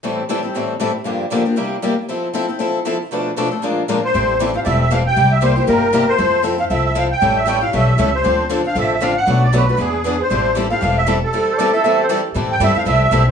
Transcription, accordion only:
X:1
M:4/4
L:1/16
Q:"Swing" 1/4=234
K:Am
V:1 name="Accordion"
z16 | z16 | z16 | z12 z2 c2- |
c4 z2 f3/2 d/2 e2 e2 f2 g2- | g2 e2 c2 c2 _B6 c2- | c4 z2 f2 e2 e2 f2 g2- | g2 e2 g2 f2 e6 c2- |
c4 z2 f2 e2 e2 f2 ^f2- | ^f2 d2 B2 B2 ^G6 c2- | c4 z2 f4 e3- e/2 z/2 A2- | A12 z4 |
z2 g2 e2 f2 e2 e4 z2 |]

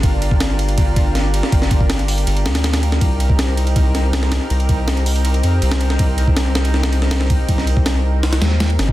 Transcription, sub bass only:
X:1
M:4/4
L:1/8
Q:1/4=161
K:Cm
V:1 name="Sub bass" clef=bass
G,,,6- G,,, z | G,,,4 G,,, D,,3 | C,,6- C,, z | C,,4- C,, F,, C,,2 |
C,,6- C,, z | C,,4- C,, E,,2 G,,, |]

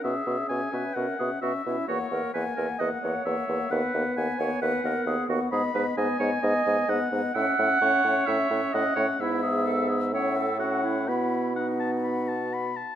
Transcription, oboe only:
X:1
M:4/4
L:1/8
Q:1/4=130
K:B
V:1 name="Oboe"
e2 g2 f2 e2 | c2 g2 f2 e2 | f2 g2 f3 z | [K:Bmix] b2 g4 f2 |
e2 c4 f2 | e4 e2 f2 | b2 f a b a b a |]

